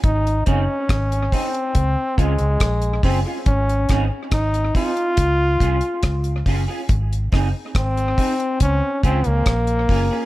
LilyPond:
<<
  \new Staff \with { instrumentName = "Clean electric guitar" } { \time 4/4 \key des \major \tempo 4 = 70 r8 <c' ees' aes'>16 r8. <c' ees' aes'>16 r8. <des' f' aes'>16 r8. <des' f' aes'>16 <des' f' aes'>16 | r8 <c' ees' aes'>16 r8. <c' ees' aes'>16 r8. <des' f' aes'>16 r8. <des' f' aes'>16 <des' f' aes'>16 | r8 <c' ees' aes'>16 r8. <c' ees' aes'>16 r8. <des' f' aes'>16 r8. <des' f' aes'>16 <des' f' aes'>16 | }
  \new Staff \with { instrumentName = "Trombone" } { \time 4/4 \key des \major ees'8 des'4 c'4 aes4 c'8 | des'8. r16 ees'8 f'2 r8 | r4 c'4 des'8 c'16 bes4~ bes16 | }
  \new Staff \with { instrumentName = "Fingered electric bass" } { \clef bass \time 4/4 \key des \major aes,,8 ges,,16 r16 aes,,8 r8 des,16 r16 des,16 des,16 bes,,8 ges,,16 r16 | aes,,8 aes,,16 r16 aes,,8 r8 des,8 c,16 r16 des,8 ges,,16 r16 | aes,,8 ges,,16 r16 aes,,8 r8 des,16 r16 des,16 des,16 bes,,8 ges,,16 r16 | }
  \new DrumStaff \with { instrumentName = "Drums" } \drummode { \time 4/4 <hh bd>16 hh16 <hh bd>8 <hh bd ss>16 hh16 <hho bd>16 hh16 <hh bd>8 <hh bd>16 hh16 <hh bd ss>16 hh16 <hho bd>8 | <hh bd>16 hh16 <hh bd ss>8 <hh bd ss>16 hh16 <hho bd>16 hh16 <hh bd>8 <hh bd>16 hh16 <hh bd ss>16 hh16 <hho bd>8 | <hh bd>16 hh16 <hho bd ss>8 <hh bd ss>16 hh16 <hho bd>16 hh16 <hh bd>8 <hh bd>16 hh16 <hh bd ss>16 hh16 <hho bd>8 | }
>>